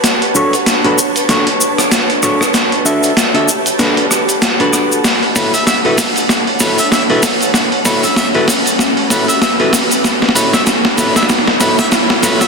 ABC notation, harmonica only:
X:1
M:4/4
L:1/16
Q:"Swing 16ths" 1/4=96
K:Bm
V:1 name="Harmonica"
z16 | z16 | z2 B e e z4 z B e e z3 | z2 B e e z4 z B e e z3 |
z2 B e z2 B e z2 B e z2 B e |]